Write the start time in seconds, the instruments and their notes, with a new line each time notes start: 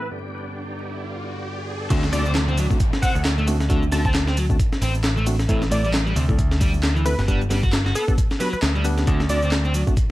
Already playing: tonewheel organ A2 E3 A4, riser
0.11 tonewheel organ G2 D3 B3 G4 D5
1.90 picked electric bass D2, overdriven electric guitar D3, tine electric piano A3 C4 D4 F#4, kick, closed hi-hat, crash, downlifter, shaker
2.03 snare, shaker
2.12 overdriven electric guitar D3, tine electric piano A3 C4 D4 F#4, digital synth lead D5, closed hi-hat, open hi-hat, shaker
2.26 overdriven electric guitar C4, shaker
2.35 snare, clap, closed hi-hat, shaker
2.48 overdriven electric guitar C4, shaker
2.58 overdriven electric guitar F#3, closed hi-hat, open hi-hat, shaker
2.70 tine electric piano A3 C4 D4 F#4, kick, shaker
2.80 kick, closed hi-hat, shaker
2.93 snare, shaker
3.02 overdriven electric guitar C4, digital synth lead F#5, kick, closed hi-hat, open hi-hat, shaker
3.15 picked electric bass D2, shaker
3.25 snare, clap, closed hi-hat, shaker
3.38 overdriven electric guitar A3, shaker
3.47 tine electric piano A3 C4 D4 F#4, closed hi-hat, open hi-hat, shaker
3.60 snare, shaker
3.70 overdriven electric guitar D3, tine electric piano A3 C4 D4 F#4, kick, closed hi-hat, shaker
3.83 shaker
3.92 overdriven electric guitar D3, tine electric piano A3 C4 D4 F#4, digital synth lead A5, snare, closed hi-hat, open hi-hat, shaker
4.05 overdriven electric guitar C4, digital synth lead A5, kick, shaker
4.15 snare, clap, closed hi-hat, shaker
4.27 overdriven electric guitar C4, snare, shaker
4.37 overdriven electric guitar F#3, closed hi-hat, open hi-hat, shaker
4.50 tine electric piano A3 C4 D4 F#4, kick, shaker
4.60 kick, closed hi-hat, shaker
4.72 snare, shaker
4.82 picked electric bass A1, overdriven electric guitar C4, open hi-hat, shaker
4.95 shaker
5.04 snare, clap, closed hi-hat, shaker
5.17 overdriven electric guitar A3, shaker
5.27 tine electric piano A3 C4 D4 F#4, closed hi-hat, open hi-hat, shaker
5.39 snare, shaker
5.49 picked electric bass A1, overdriven electric guitar A2, tine electric piano A3 C4 E4 A4, kick, closed hi-hat, shaker
5.62 snare, shaker
5.71 overdriven electric guitar A2, tine electric piano A3 C4 E4 A4, digital synth lead D5, closed hi-hat, open hi-hat, shaker
5.85 overdriven electric guitar G3, shaker
5.94 snare, clap, closed hi-hat, shaker
6.06 overdriven electric guitar G3, shaker
6.16 picked electric bass D2, overdriven electric guitar C3, closed hi-hat, open hi-hat, shaker
6.28 tine electric piano A3 C4 E4 A4, kick, shaker
6.39 kick, closed hi-hat, shaker
6.51 snare, shaker
6.60 overdriven electric guitar G3, kick, closed hi-hat, open hi-hat, shaker
6.74 shaker
6.83 snare, clap, closed hi-hat, shaker
6.96 overdriven electric guitar E3, shaker
7.05 tine electric piano A3 C4 E4 A4, digital synth lead B4, closed hi-hat, open hi-hat, shaker
7.18 picked electric bass G1, snare, shaker
7.28 overdriven electric guitar G3, tine electric piano B3 D4 G4 B4, kick, closed hi-hat, shaker
7.41 shaker
7.50 overdriven electric guitar G3, tine electric piano B3 D4 G4 B4, snare, closed hi-hat, open hi-hat, shaker
7.63 overdriven electric guitar F#4, kick, shaker
7.73 snare, clap, closed hi-hat, shaker
7.86 overdriven electric guitar F#4, snare, shaker
7.95 overdriven electric guitar B3, digital synth lead A4, closed hi-hat, open hi-hat, shaker
8.08 tine electric piano B3 D4 G4 B4, kick, shaker
8.18 kick, closed hi-hat, shaker
8.31 snare, shaker
8.40 overdriven electric guitar F#3, tine electric piano B3 D4 G4 B4, digital synth lead B4, open hi-hat, shaker
8.53 digital synth lead B4, muted picked electric bass stroke, shaker
8.62 picked electric bass D2, snare, clap, closed hi-hat, shaker
8.75 overdriven electric guitar G3, shaker
8.84 tine electric piano B3 D4 G4 B4, closed hi-hat, open hi-hat, shaker
8.98 snare, shaker
9.07 picked electric bass D2, overdriven electric guitar D3, tine electric piano A3 C4 D4 F#4, kick, closed hi-hat, shaker
9.20 snare, shaker
9.29 overdriven electric guitar D3, tine electric piano A3 C4 D4 F#4, digital synth lead D5, closed hi-hat, open hi-hat, shaker
9.42 overdriven electric guitar C4, shaker
9.52 snare, clap, closed hi-hat, shaker
9.65 overdriven electric guitar C4, shaker
9.74 overdriven electric guitar F#3, closed hi-hat, open hi-hat, shaker
9.87 tine electric piano A3 C4 D4 F#4, kick, shaker
9.97 kick, closed hi-hat, shaker